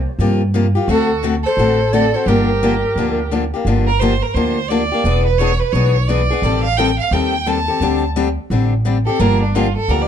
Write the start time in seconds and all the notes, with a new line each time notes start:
0.19 G2 C3 F3 A#3 F4 G4
0.54 C3 F3 A#3 F4 G4
0.75 A#3 F4 G4
0.88 D2 D3 A3 C4 F#4 A4
1.23 D3 A3 C4 F#4 A4
1.44 A4 C5
1.57 A1 D3 A3 C4 F#4 A4
1.92 D3 A3 C4 F#4 A4 D5
2.14 C4 F#4 A4 C5
2.26 G1 D3 F3 A#3 D4 G4 A#4
2.63 D3 F3 A#3 D4 G4
2.96 D2 D3 F3 A#3 D4 G4
3.31 D3 F3 A#3 D4 G4
3.54 A#3 D4 G4
3.65 G1 D3 F3 A#3 D4 G4
3.87 A#4
4.00 D3 F3 A#3 D4 G4 C5
4.22 A#4
4.34 D2 D3 F3 A#3 D4 G4 C5
4.69 D3 F3 A#3 D4 G4 D5
4.92 A#3 D4 G4
5.04 E1 E3 B3 D4 G#4
5.26 B4
5.38 E3 B3 D4 G#4 C#5
5.60 B4
5.73 B1 E3 B3 D4 G#4 C#5
6.08 E3 B3 D4 G#4 D5
6.30 B3 D4 G#4
6.42 A1 D#3 G3 C4 G4 A4
6.63 F5
6.77 D#3 G3 C4 G4 A4 G5
6.99 F5
7.11 D#2 D#3 G3 C4 G4 A4 G5
7.46 D#3 G3 C4 G4 A4 A5
7.68 C4 G4 A4
7.80 D2 D3 G3 C4 D4 G4
8.16 D3 G3 C4 D4 G4
8.50 A1 D3 G3 C4 D4 G4
8.85 D3 G3 C4 D4 G4
9.06 C4 D4 G4 A4
9.19 G1 D3 F3 A#3 D4 G4 A#4
9.43 D4
9.55 D3 F3 A#3 D4 F4 G4
9.76 A4
9.88 D2 D3 F3 A#3 D4 G4 A#4
10.02 D5